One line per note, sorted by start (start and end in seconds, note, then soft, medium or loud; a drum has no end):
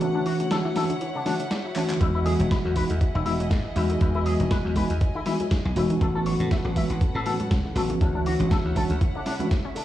0.00 0.10 C#3 medium
0.00 0.73 E3 loud
0.00 0.73 A3 medium
0.00 0.05 D4 medium
0.00 0.74 D4 medium
0.00 5.97 E4 medium
0.00 0.74 F#4 loud
0.00 1.99 C#5 medium
0.00 0.73 C#5 medium
0.00 3.97 F#5 medium
0.00 closed hi-hat medium
0.15 0.22 D3 medium
0.15 0.18 D4 loud
0.26 0.39 E3 medium
0.26 0.33 F#4 loud
0.26 open hi-hat loud
0.40 0.47 C#3 medium
0.40 closed hi-hat medium
0.51 0.64 D3 medium
0.51 0.55 A4 medium
0.51 snare loud
0.51 closed hi-hat medium
0.65 0.72 E3 loud
0.75 0.90 E3 medium
0.75 0.81 E3 medium
0.75 0.90 A3 medium
0.75 0.91 C#4 medium
0.75 0.91 D4 medium
0.75 0.91 F#4 loud
0.75 0.83 A4 loud
0.75 snare medium
0.75 open hi-hat loud
0.90 0.97 D3 medium
0.90 closed hi-hat medium
1.01 1.10 E3 medium
1.01 closed hi-hat medium
1.15 1.22 C#3 medium
1.15 1.19 D4 loud
1.25 1.31 D3 medium
1.25 1.35 E3 medium
1.25 1.35 A3 medium
1.25 1.35 C#4 medium
1.25 1.35 D4 medium
1.25 1.33 D4 loud
1.25 1.36 F#4 loud
1.25 snare medium
1.25 open hi-hat loud
1.40 1.44 D3 medium
1.40 closed hi-hat medium
1.51 1.64 D4 medium
1.51 snare loud
1.51 closed hi-hat medium
1.65 1.69 F#3 medium
1.75 1.98 E3 loud
1.75 1.98 A3 loud
1.75 1.98 C#4 loud
1.75 1.89 C#4 medium
1.75 1.99 D4 medium
1.75 1.80 D4 medium
1.75 1.99 F#4 loud
1.75 clap medium
1.75 open hi-hat loud
1.90 1.94 D3 loud
1.90 clap loud
1.90 closed hi-hat medium
2.00 2.34 E2 medium
2.00 2.10 D#3 medium
2.00 2.73 E3 loud
2.00 2.73 G#3 medium
2.00 2.73 B3 medium
2.00 2.05 E4 medium
2.00 2.74 F#4 loud
2.00 5.97 G#4 medium
2.00 5.97 D#5 medium
2.00 2.74 D#5 medium
2.00 kick loud
2.00 closed hi-hat medium
2.00 high bongo medium
2.15 2.22 E3 medium
2.15 2.18 E4 loud
2.26 2.39 F#3 medium
2.26 2.33 G#4 loud
2.26 open hi-hat loud
2.26 high bongo medium
2.40 2.58 E1 medium
2.40 2.47 D#3 medium
2.40 closed hi-hat medium
2.40 high conga medium
2.40 low conga loud
2.51 2.64 E3 medium
2.51 2.55 B4 medium
2.51 kick loud
2.51 snare loud
2.51 closed hi-hat medium
2.65 2.83 E2 loud
2.65 2.72 F#3 loud
2.65 high bongo medium
2.76 2.90 E3 medium
2.76 2.81 F#3 medium
2.76 2.91 G#3 medium
2.76 2.91 B3 medium
2.76 2.91 D#4 medium
2.76 2.91 F#4 loud
2.76 2.83 B4 loud
2.76 kick medium
2.76 open hi-hat loud
2.76 high conga medium
2.90 2.98 E2 medium
2.90 2.97 E3 medium
2.90 closed hi-hat medium
2.90 high bongo medium
3.01 3.10 F#3 medium
3.01 muted slap bass stroke soft
3.01 kick loud
3.01 closed hi-hat medium
3.15 3.52 E1 loud
3.15 3.22 D#3 medium
3.15 3.18 E4 loud
3.25 3.35 E3 medium
3.25 3.39 E3 medium
3.25 3.35 G#3 medium
3.25 3.35 B3 medium
3.25 3.35 D#4 medium
3.25 3.33 E4 loud
3.25 3.35 F#4 loud
3.25 open hi-hat loud
3.25 high bongo medium
3.40 3.47 F#3 medium
3.40 closed hi-hat medium
3.40 high conga medium
3.50 3.62 G#2 medium
3.50 3.60 D#3 loud
3.50 kick loud
3.50 snare loud
3.50 closed hi-hat medium
3.50 high bongo medium
3.65 3.72 E3 medium
3.75 3.96 E2 loud
3.75 3.98 E3 loud
3.75 3.81 F#3 loud
3.75 3.98 G#3 loud
3.75 3.98 B3 medium
3.75 3.99 D#4 medium
3.75 3.80 E4 medium
3.75 3.99 F#4 loud
3.75 open hi-hat loud
3.90 3.94 D#3 loud
3.90 closed hi-hat medium
3.90 high bongo medium
3.90 low conga medium
4.00 4.35 E2 medium
4.00 4.10 D#3 medium
4.00 4.73 E3 loud
4.00 4.73 G#3 medium
4.00 4.73 B3 loud
4.00 4.05 E4 medium
4.00 4.74 F#4 loud
4.00 4.73 D#5 loud
4.00 5.99 G#5 medium
4.00 kick loud
4.00 closed hi-hat medium
4.15 4.22 E3 medium
4.15 4.19 E4 loud
4.15 high bongo medium
4.26 4.39 F#3 medium
4.26 4.33 G#4 loud
4.26 open hi-hat loud
4.40 4.58 E1 medium
4.40 4.47 D#3 medium
4.40 closed hi-hat medium
4.40 high conga medium
4.40 low conga medium
4.51 4.64 E3 medium
4.51 4.55 B4 medium
4.51 kick loud
4.51 snare loud
4.51 closed hi-hat medium
4.51 high bongo medium
4.65 4.83 E2 loud
4.65 4.72 F#3 loud
4.76 4.91 E3 loud
4.76 4.81 F#3 medium
4.76 4.91 G#3 medium
4.76 4.91 B3 medium
4.76 4.91 D#4 medium
4.76 4.91 F#4 loud
4.76 4.83 B4 loud
4.76 kick medium
4.76 open hi-hat loud
4.76 high bongo medium
4.76 high conga loud
4.90 4.98 E2 medium
4.90 4.97 E3 medium
4.90 closed hi-hat medium
5.01 5.10 F#3 medium
5.01 kick loud
5.01 closed hi-hat medium
5.15 5.22 D#3 medium
5.15 5.18 E4 loud
5.15 high bongo medium
5.26 5.35 E3 medium
5.26 5.39 E3 medium
5.26 5.35 G#3 medium
5.26 5.35 B3 medium
5.26 5.35 D#4 medium
5.26 5.33 E4 loud
5.26 5.36 F#4 loud
5.26 snare medium
5.26 open hi-hat loud
5.40 5.47 F#3 medium
5.40 closed hi-hat medium
5.40 high bongo medium
5.40 high conga medium
5.51 5.60 D#3 loud
5.51 kick loud
5.51 snare loud
5.51 closed hi-hat medium
5.65 5.74 B1 medium
5.65 5.72 E3 medium
5.76 5.86 E1 loud
5.76 5.98 E3 loud
5.76 5.82 F#3 loud
5.76 5.98 G#3 medium
5.76 5.99 B3 medium
5.76 5.99 D#4 medium
5.76 5.81 E4 medium
5.76 5.99 F#4 loud
5.76 open hi-hat loud
5.76 high bongo medium
5.90 5.94 D#3 loud
5.90 closed hi-hat medium
5.90 low conga medium
6.00 6.35 A1 medium
6.00 6.10 C#3 medium
6.00 6.73 E3 loud
6.00 6.73 A3 medium
6.00 6.73 B3 medium
6.00 7.99 C#4 medium
6.00 6.74 C#4 loud
6.00 6.74 F#4 loud
6.00 7.99 A4 medium
6.00 6.05 A4 medium
6.00 7.99 B4 medium
6.00 7.99 F#5 medium
6.00 kick loud
6.00 closed hi-hat soft
6.00 high bongo medium
6.15 6.22 E3 medium
6.15 6.19 A4 loud
6.26 6.40 F#3 medium
6.26 6.33 C#5 loud
6.26 open hi-hat loud
6.40 6.58 A2 medium
6.40 6.47 C#3 medium
6.40 closed hi-hat medium
6.40 high bongo medium
6.40 high conga medium
6.40 low conga medium
6.51 6.64 E3 medium
6.51 6.55 E5 medium
6.51 kick loud
6.51 snare loud
6.51 closed hi-hat soft
6.65 6.83 A1 loud
6.65 6.72 F#3 loud
6.65 high bongo medium
6.75 6.90 E3 medium
6.75 6.81 F#3 medium
6.75 6.90 A3 medium
6.75 6.91 B3 medium
6.75 6.91 C#4 medium
6.75 6.91 F#4 loud
6.75 6.83 E5 loud
6.75 kick medium
6.75 open hi-hat loud
6.75 high conga medium
6.90 6.98 A1 loud
6.90 6.97 E3 medium
6.90 closed hi-hat medium
7.01 7.10 F#3 medium
7.01 muted slap bass stroke soft
7.01 kick loud
7.01 closed hi-hat medium
7.01 high bongo medium
7.15 7.52 A2 loud
7.15 7.22 C#3 medium
7.15 7.19 A4 loud
7.25 7.35 E3 medium
7.25 7.39 E3 medium
7.25 7.35 A3 medium
7.25 7.35 B3 medium
7.25 7.35 C#4 medium
7.25 7.36 F#4 loud
7.25 7.33 A4 loud
7.25 open hi-hat loud
7.25 high bongo medium
7.40 7.47 F#3 medium
7.40 closed hi-hat medium
7.40 high conga loud
7.51 7.62 C#2 medium
7.51 7.60 C#3 loud
7.51 kick loud
7.51 snare loud
7.51 closed hi-hat medium
7.65 7.72 E3 medium
7.65 high bongo medium
7.75 7.95 A1 loud
7.75 7.98 E3 loud
7.75 7.81 F#3 loud
7.75 7.98 A3 medium
7.75 7.98 B3 medium
7.75 7.99 C#4 medium
7.75 7.99 F#4 loud
7.75 7.80 A4 medium
7.75 open hi-hat loud
7.89 7.94 C#3 loud
7.89 closed hi-hat medium
7.89 high bongo medium
7.89 low conga medium
8.00 8.35 D2 medium
8.00 8.10 C#3 medium
8.00 8.73 E3 loud
8.00 8.73 A3 medium
8.00 8.05 D4 medium
8.00 8.74 D4 medium
8.00 9.85 E4 medium
8.00 8.74 F#4 loud
8.00 9.85 C#5 medium
8.00 8.74 C#5 medium
8.00 9.85 F#5 medium
8.00 kick loud
8.00 closed hi-hat soft
8.00 high conga medium
8.15 8.22 D3 medium
8.15 8.18 D4 loud
8.26 8.39 E3 medium
8.26 8.33 F#4 loud
8.26 open hi-hat loud
8.26 high bongo soft
8.40 8.58 A1 medium
8.40 8.47 C#3 medium
8.40 closed hi-hat medium
8.40 high conga medium
8.40 low conga medium
8.51 8.65 D3 medium
8.51 8.56 A4 medium
8.51 kick loud
8.51 snare loud
8.51 closed hi-hat soft
8.51 high bongo medium
8.65 8.83 D2 medium
8.65 8.72 E3 loud
8.75 8.90 E3 medium
8.75 8.81 E3 medium
8.75 8.91 A3 medium
8.75 8.91 C#4 medium
8.75 8.91 D4 medium
8.75 8.91 F#4 loud
8.75 8.83 A4 loud
8.75 kick medium
8.75 open hi-hat loud
8.75 high conga loud
8.90 8.98 D2 medium
8.90 8.97 D3 medium
8.90 closed hi-hat medium
8.90 high bongo soft
9.01 9.10 E3 medium
9.01 kick loud
9.01 closed hi-hat medium
9.15 9.22 C#3 medium
9.15 9.19 D4 loud
9.15 high bongo medium
9.26 9.39 C#3 medium
9.26 9.33 D4 loud
9.26 snare medium
9.26 open hi-hat loud
9.39 9.47 E3 loud
9.39 9.44 E3 loud
9.39 9.47 A3 medium
9.39 9.47 C#4 medium
9.39 9.48 D4 medium
9.39 9.48 F#4 loud
9.39 closed hi-hat medium
9.39 high conga loud
9.50 9.56 C#3 loud
9.50 kick loud
9.50 snare loud
9.50 closed hi-hat soft
9.50 high bongo medium
9.65 9.72 C#4 loud
9.75 9.81 C#3 medium
9.75 9.80 D4 medium
9.75 open hi-hat loud
9.75 high bongo medium